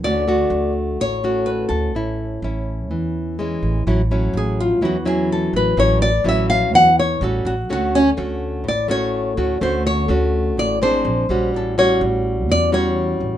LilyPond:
<<
  \new Staff \with { instrumentName = "Nylon-string guitar" } { \time 4/4 \key a \major \tempo 4 = 125 d''4. r8 cis''4 b'8 a'8~ | a'2. r4 | r4 gis'8 f'8 fis'8 gis'8 a'8 b'8 | cis''8 d''8 e''8 f''8 fis''8 cis''8 a'8 fis'8 |
fis'8 cis'8 r4 d''8 cis''4. | c''8 cis''8 r4 d''8 c''4. | a'8 cis''8 r4 d''8 cis''4. | }
  \new Staff \with { instrumentName = "Nylon-string guitar" } { \time 4/4 \key a \major << { <a cis' fis'>8 <a fis'>2 <a cis' fis'>4. | <cis' e'>4 <cis' e'>2 <gis cis' e'>4 | <fis cis' e'>8 <fis cis' e'>4. <fis cis' e'>8 <fis cis' e'>4. | <fis cis' e'>8 r8 <fis cis' e'>4. r8 <g cis' fis'>8 r8 |
<a cis' fis'>8 r8 <a cis' fis'>4 r8 <a cis' fis'>4 <a cis' fis'>8 | <a cis' fis'>4 <a cis' fis'>4. <gis c' d'>4 <g cis' fis'>8~ | <g cis' fis'>8 <g cis' fis'>2 <g cis' fis'>4. | } \\ { d2 a,2 | a,2 e2 | a,2 e2 | a,2 e4 r4 |
d2 a,2 | d2 a,4 r4 | a,2 e2 | } >> }
  \new Staff \with { instrumentName = "Upright bass" } { \clef bass \time 4/4 \key a \major d,4 d,4 a,,4. d,8 | a,,4 a,,4 e,4. a,,8 | a,,4 a,,4 e,4. a,,8 | a,,4 a,,4 e,4 a,,8 a,,8 |
d,4 d,4 a,,4. d,8 | d,4 d,4 a,,4 bes,,8 bes,,8 | a,,4 a,,4 e,4. a,,8 | }
>>